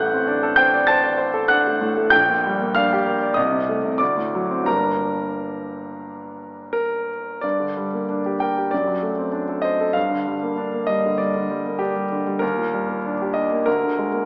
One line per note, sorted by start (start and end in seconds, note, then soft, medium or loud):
0.00 2.10 A1 medium
0.00 1.81 A2 medium
0.00 0.22 A3 medium
0.00 0.54 F#5 medium
0.00 0.58 F#6 loud
0.14 0.38 C4 medium
0.27 0.52 D4 medium
0.43 0.67 A4 medium
0.56 0.82 C5 medium
0.56 0.86 G5 medium
0.56 0.87 G6 loud
0.74 0.98 D5 medium
0.87 1.13 C5 medium
0.87 1.46 A5 medium
0.87 1.49 A6 medium
1.04 1.28 D5 medium
1.18 1.43 C5 medium
1.34 1.59 A4 medium
1.48 1.75 D4 medium
1.48 1.79 F#5 medium
1.48 1.81 F#6 loud
1.67 1.92 A3 medium
1.81 2.07 A2 medium
1.97 2.13 A3 medium
2.10 3.33 A#1 medium
2.10 2.71 G5 medium
2.10 2.74 G6 loud
2.30 2.55 A#2 medium
2.46 2.70 G3 medium
2.61 2.85 A#3 medium
2.75 3.00 D4 medium
2.75 3.33 F5 medium
2.75 3.36 F6 loud
2.93 3.16 G4 medium
3.06 3.31 A#4 medium
3.22 3.37 D5 medium
3.34 3.99 C2 medium
3.34 3.96 D#5 medium
3.34 3.99 D#6 medium
3.52 3.78 C3 soft
3.69 3.94 A3 medium
3.85 4.01 C3 soft
3.98 4.65 D2 medium
3.98 4.62 D5 medium
3.98 4.65 D6 medium
4.17 4.43 A2 soft
4.35 4.61 F#3 medium
4.50 4.67 C4 soft
4.63 7.38 G2 medium
4.63 7.39 G3 soft
4.63 7.39 A#3 soft
4.63 7.08 A#5 medium
4.68 7.40 G1 soft
4.68 7.40 D4 soft
4.68 6.71 A#4 medium
6.73 7.43 A#4 medium
7.41 8.68 G2 soft
7.41 8.40 D5 medium
7.60 7.86 D3 soft
7.77 8.03 G3 soft
7.94 8.19 A#3 soft
8.09 8.35 D4 soft
8.26 8.51 G4 soft
8.40 8.66 A#4 soft
8.40 8.72 G5 medium
8.58 8.73 G4 soft
8.71 9.93 F#2 soft
8.71 9.64 D5 medium
8.88 9.11 F#3 soft
9.03 9.27 A3 soft
9.19 9.43 C4 soft
9.32 9.57 D4 soft
9.49 9.74 A4 soft
9.62 9.89 C5 soft
9.62 9.94 D#5 medium
9.81 9.96 A4 soft
9.93 12.38 G2 medium
9.93 10.88 F5 medium
10.11 10.36 D3 soft
10.28 10.52 G3 soft
10.43 10.67 A#3 soft
10.58 10.82 D4 soft
10.74 10.98 A#3 soft
10.87 11.13 G3 soft
10.87 11.18 D#5 medium
11.06 11.29 D3 soft
11.18 11.44 G3 soft
11.18 11.80 D5 medium
11.36 11.60 D3 soft
11.50 11.75 G3 soft
11.66 11.90 A#3 soft
11.79 12.05 D4 soft
11.79 12.41 G4 medium
11.96 12.20 G3 soft
12.12 12.36 D3 soft
12.27 12.42 G3 soft
12.39 13.63 D#2 medium
12.39 13.34 A#4 medium
12.58 12.82 A#2 soft
12.74 12.98 G3 soft
12.89 13.14 A#3 soft
13.06 13.30 D4 soft
13.22 13.46 G4 soft
13.34 13.61 D4 soft
13.34 13.66 D#5 medium
13.52 13.67 A#3 soft
13.66 14.25 D2 medium
13.66 14.25 A#4 medium
13.83 14.08 D3 soft
13.98 14.23 G#3 soft
14.13 14.25 A#3 soft